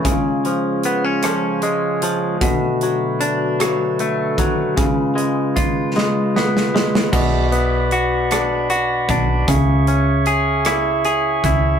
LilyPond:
<<
  \new Staff \with { instrumentName = "Tonewheel organ" } { \time 6/8 \key b \dorian \tempo 4. = 51 <cis gis eis' cis''>2. | <d a fis' b'>2. | <cis gis eis' b'>2. | <fis' b' d'' b''>2. |
<gis' cis'' e'' cis'''>2. | }
  \new Staff \with { instrumentName = "Clean electric guitar" } { \time 6/8 \key b \dorian cis8 eis8 b16 cis'16 eis8 gis8 eis8 | b,8 fis8 d'8 fis8 a8 fis8 | cis8 gis8 eis'8 gis8 b8 gis8 | b,8 b8 fis'8 d'8 fis'8 d'8 |
cis8 cis'8 gis'8 e'8 gis'8 e'8 | }
  \new Staff \with { instrumentName = "Fingered electric bass" } { \clef bass \time 6/8 \key b \dorian r2. | r2. | r2. | b,,2~ b,,8 b,,8 |
cis,2~ cis,8 cis,8 | }
  \new DrumStaff \with { instrumentName = "Drums" } \drummode { \time 6/8 <hh bd>8 hh8 hh8 <hh ss>8 hh8 hh8 | <hh bd>8 hh8 hh8 <hh ss>8 hh8 <hh bd>8 | <hh bd>8 hh8 <hh bd ss>8 sn8 sn16 sn16 sn16 sn16 | <cymc bd>8 hh8 hh8 <hh ss>8 hh8 <hh bd>8 |
<hh bd>8 hh8 hh8 <hh ss>8 hh8 <hh bd>8 | }
>>